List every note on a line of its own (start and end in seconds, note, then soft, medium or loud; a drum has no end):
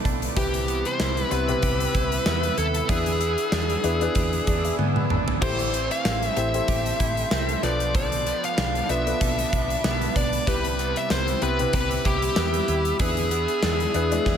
0.00 0.35 B2 medium
0.00 0.36 F3 medium
0.00 0.43 A3 medium
0.00 0.37 B3 medium
0.00 0.39 B3 medium
0.00 0.38 D4 medium
0.00 0.37 F4 medium
0.00 0.38 F4 medium
0.00 0.38 A4 loud
0.00 0.34 B4 medium
0.00 0.34 A5 medium
0.00 0.34 D6 medium
0.05 0.28 B1 loud
0.05 0.43 D4 medium
0.05 kick medium
0.05 closed hi-hat medium
0.22 closed hi-hat medium
0.36 0.82 C2 loud
0.36 0.68 C3 medium
0.36 1.08 C3 medium
0.36 3.55 E3 medium
0.36 0.68 G3 medium
0.36 0.66 C4 medium
0.36 1.08 E4 medium
0.36 1.08 G4 medium
0.36 1.62 G4 medium
0.36 0.87 G4 loud
0.36 1.09 B4 medium
0.36 2.87 E5 medium
0.36 2.87 B5 medium
0.36 5.38 E6 medium
0.36 kick loud
0.36 closed hi-hat medium
0.54 closed hi-hat medium
0.67 1.63 G3 soft
0.67 1.31 B3 medium
0.67 1.62 C4 medium
0.67 closed hi-hat medium
0.85 1.32 C5 loud
0.85 closed hi-hat medium
1.00 1.22 C2 loud
1.00 1.94 E4 medium
1.00 snare loud
1.00 tambourine medium
1.17 closed hi-hat medium
1.31 1.54 C2 loud
1.31 2.26 B3 medium
1.31 1.44 C4 medium
1.31 1.44 E4 medium
1.31 1.44 G4 medium
1.31 2.62 B4 loud
1.31 1.45 B4 medium
1.31 closed hi-hat medium
1.48 2.43 C3 medium
1.48 2.43 E4 medium
1.48 2.44 G4 medium
1.48 2.44 B4 medium
1.48 closed hi-hat medium
1.61 1.86 C2 loud
1.61 2.88 C3 medium
1.61 2.88 G3 medium
1.61 2.89 G4 medium
1.61 kick medium
1.61 closed hi-hat medium
1.80 closed hi-hat medium
1.94 2.17 C2 loud
1.94 2.57 E4 medium
1.94 kick medium
1.94 closed hi-hat medium
2.12 closed hi-hat medium
2.26 2.49 E2 medium
2.26 2.89 B3 medium
2.26 snare loud
2.26 tambourine medium
2.43 closed hi-hat medium
2.57 2.80 D#2 medium
2.57 3.52 E4 medium
2.57 2.89 A4 medium
2.57 closed hi-hat medium
2.74 closed hi-hat medium
2.88 3.35 E2 loud
2.88 3.20 E3 medium
2.88 3.20 B3 medium
2.88 3.21 B3 medium
2.88 3.61 D4 medium
2.88 3.61 E4 medium
2.88 3.19 E4 medium
2.88 3.61 G#4 medium
2.88 4.75 G#4 medium
2.88 4.14 G#4 medium
2.88 3.61 B4 medium
2.88 5.39 D5 medium
2.88 5.39 G#5 medium
2.88 kick loud
2.88 closed hi-hat medium
3.06 closed hi-hat medium
3.20 3.83 B3 medium
3.20 4.15 B3 soft
3.20 4.19 E4 medium
3.20 closed hi-hat medium
3.38 closed hi-hat medium
3.52 3.75 E2 loud
3.52 4.46 D4 medium
3.52 snare loud
3.52 tambourine medium
3.70 closed hi-hat soft
3.84 4.07 E2 loud
3.84 4.78 B3 medium
3.84 3.97 D4 medium
3.84 3.97 E4 medium
3.84 3.97 G#4 medium
3.84 3.97 B4 medium
3.84 closed hi-hat medium
4.01 4.96 D4 medium
4.01 4.96 E4 medium
4.01 4.96 G#4 medium
4.01 4.96 B4 loud
4.01 closed hi-hat medium
4.14 4.38 E2 loud
4.14 5.42 E3 medium
4.14 5.42 B3 medium
4.14 5.42 G#4 medium
4.14 kick medium
4.14 closed hi-hat medium
4.19 7.66 E4 medium
4.33 closed hi-hat medium
4.47 4.70 E2 medium
4.47 5.09 D4 medium
4.47 4.63 D5 medium
4.47 kick medium
4.47 closed hi-hat medium
4.65 4.78 E5 medium
4.65 closed hi-hat medium
4.79 5.01 G#2 medium
4.79 5.49 B3 medium
4.79 4.95 G#5 medium
4.79 high tom medium
4.96 5.39 B5 medium
4.96 mid tom medium
5.10 5.33 G#1 medium
5.10 5.49 D4 medium
5.10 mid tom medium
5.28 floor tom loud
5.41 5.87 A1 loud
5.41 5.73 A2 medium
5.41 7.63 E3 medium
5.41 5.73 E3 medium
5.41 5.71 A3 medium
5.41 6.14 E4 medium
5.41 6.14 G4 medium
5.41 6.67 G4 medium
5.41 7.61 A4 medium
5.41 6.14 A4 medium
5.41 5.88 C5 loud
5.41 6.14 C5 medium
5.41 7.61 G5 medium
5.41 7.61 C6 loud
5.41 kick loud
5.41 crash medium
5.59 closed hi-hat medium
5.73 6.67 E3 soft
5.73 6.69 A3 medium
5.73 6.35 C4 medium
5.73 closed hi-hat medium
5.91 6.37 F5 loud
5.91 closed hi-hat medium
6.05 6.28 A1 medium
6.05 6.98 E4 medium
6.05 snare loud
6.05 tambourine medium
6.23 closed hi-hat medium
6.36 6.59 A1 medium
6.36 7.30 C4 medium
6.36 6.49 E4 medium
6.36 6.50 G4 medium
6.36 6.50 A4 medium
6.36 6.50 C5 medium
6.36 7.64 E5 loud
6.36 closed hi-hat medium
6.54 7.48 E4 medium
6.54 7.49 G4 medium
6.54 7.49 A4 medium
6.54 7.49 C5 medium
6.54 closed hi-hat medium
6.67 6.91 A1 loud
6.67 7.62 A2 medium
6.67 7.63 E3 medium
6.67 7.62 A3 medium
6.67 7.70 G4 medium
6.67 kick medium
6.67 closed hi-hat medium
6.86 closed hi-hat medium
7.00 7.23 A1 loud
7.00 7.70 E4 medium
7.00 kick medium
7.00 closed hi-hat medium
7.17 closed hi-hat medium
7.31 7.54 C2 medium
7.31 7.70 C4 medium
7.31 snare loud
7.31 tambourine medium
7.49 closed hi-hat medium
7.63 8.31 B1 loud
7.63 8.27 B2 medium
7.63 7.94 F3 medium
7.63 8.26 F3 medium
7.63 8.25 B3 medium
7.63 8.64 D4 medium
7.63 8.65 F4 medium
7.63 8.65 A4 medium
7.63 10.44 B4 medium
7.63 8.65 B4 medium
7.63 7.94 D5 medium
7.63 10.44 A5 medium
7.63 10.44 D6 medium
7.63 closed hi-hat medium
7.80 closed hi-hat medium
7.95 10.47 F3 medium
7.95 9.20 A4 medium
7.95 8.44 D5 loud
7.95 kick loud
7.95 closed hi-hat medium
8.12 closed hi-hat medium
8.26 9.21 F3 soft
8.26 9.24 B3 medium
8.26 8.89 B3 medium
8.26 closed hi-hat medium
8.44 8.90 F5 loud
8.44 closed hi-hat medium
8.58 8.80 B1 loud
8.58 9.51 D4 medium
8.58 snare loud
8.58 tambourine medium
8.75 closed hi-hat soft
8.89 9.12 B1 loud
8.89 9.84 B3 medium
8.89 9.02 D4 medium
8.89 9.02 F4 medium
8.89 9.02 A4 medium
8.89 9.03 B4 medium
8.89 10.16 E5 loud
8.89 closed hi-hat medium
9.06 10.01 D4 medium
9.06 10.01 F4 medium
9.06 10.02 A4 medium
9.06 10.02 B4 medium
9.06 closed hi-hat medium
9.20 9.44 B1 loud
9.20 10.46 B2 medium
9.20 10.47 F3 medium
9.20 10.47 A4 medium
9.20 kick medium
9.20 closed hi-hat medium
9.25 10.48 B3 medium
9.39 closed hi-hat medium
9.53 9.75 B1 medium
9.53 10.14 D4 medium
9.53 kick medium
9.53 closed hi-hat medium
9.70 closed hi-hat medium
9.84 10.07 B1 loud
9.84 10.78 B3 medium
9.84 snare loud
9.84 tambourine medium
10.02 closed hi-hat medium
10.16 10.38 B1 medium
10.16 10.54 D4 medium
10.16 10.45 D5 loud
10.16 kick medium
10.16 closed hi-hat medium
10.33 closed hi-hat medium
10.47 10.93 C2 loud
10.47 10.79 C3 medium
10.47 11.19 C3 medium
10.47 13.00 G3 medium
10.47 10.79 G3 medium
10.47 10.77 C4 medium
10.47 11.19 E4 medium
10.47 11.19 G4 medium
10.47 11.72 G4 medium
10.47 11.19 B4 medium
10.47 10.98 B4 medium
10.47 12.97 E5 medium
10.47 12.97 B5 medium
10.47 14.37 E6 loud
10.47 kick loud
10.47 closed hi-hat medium
10.64 closed hi-hat medium
10.78 11.74 G3 medium
10.78 11.42 B3 medium
10.78 11.73 C4 medium
10.78 closed hi-hat medium
10.96 11.10 E5 loud
10.96 closed hi-hat medium
11.10 11.33 C2 loud
11.10 12.05 E4 medium
11.10 11.43 C5 medium
11.10 snare loud
11.10 tambourine medium
11.28 closed hi-hat soft
11.42 11.65 C2 loud
11.42 12.36 B3 medium
11.42 11.55 C4 medium
11.42 11.55 E4 medium
11.42 11.55 G4 medium
11.42 11.55 B4 medium
11.42 11.73 B4 medium
11.42 closed hi-hat medium
11.59 12.54 C3 medium
11.59 12.54 E4 medium
11.59 12.54 G4 medium
11.59 12.54 B4 medium
11.59 closed hi-hat medium
11.72 11.96 C2 loud
11.72 12.99 C3 medium
11.72 12.99 G3 medium
11.72 13.00 G4 medium
11.72 12.06 B4 loud
11.72 kick medium
11.72 closed hi-hat medium
11.91 closed hi-hat medium
12.05 12.28 C2 loud
12.05 12.68 E4 medium
12.05 12.96 G4 medium
12.05 kick medium
12.05 closed hi-hat medium
12.22 closed hi-hat medium
12.36 12.59 E2 medium
12.36 12.99 B3 medium
12.36 snare loud
12.36 tambourine medium
12.54 closed hi-hat medium
12.68 12.91 D#2 loud
12.68 13.62 E4 medium
12.68 closed hi-hat medium
12.85 closed hi-hat medium
12.99 13.45 E2 loud
12.99 13.31 E3 medium
12.99 13.30 B3 medium
12.99 13.31 B3 medium
12.99 13.71 D4 medium
12.99 13.72 E4 medium
12.99 13.30 E4 medium
12.99 13.72 G#4 medium
12.99 14.25 G#4 medium
12.99 14.37 G#4 medium
12.99 13.72 B4 medium
12.99 14.37 D5 medium
12.99 14.37 E5 medium
12.99 kick loud
12.99 closed hi-hat medium
13.17 closed hi-hat medium
13.31 13.93 B3 medium
13.31 14.26 B3 soft
13.31 14.29 E4 medium
13.31 closed hi-hat medium
13.48 closed hi-hat medium
13.63 13.86 E2 loud
13.63 14.37 D4 medium
13.63 snare loud
13.63 tambourine medium
13.80 closed hi-hat soft
13.94 14.17 E2 loud
13.94 14.37 B3 medium
13.94 14.07 D4 medium
13.94 14.08 E4 medium
13.94 14.08 G#4 medium
13.94 14.08 B4 medium
13.94 14.11 D5 medium
13.94 closed hi-hat medium
14.11 14.37 G#3 medium
14.11 14.37 D4 medium
14.11 14.37 E4 medium
14.11 14.37 B4 loud
14.11 14.25 E5 medium
14.11 closed hi-hat medium
14.24 14.37 E2 loud
14.24 14.37 E3 medium
14.24 14.37 B3 medium
14.24 14.37 G#4 medium
14.24 14.37 E5 medium
14.24 kick medium
14.24 snare medium
14.29 14.37 E4 medium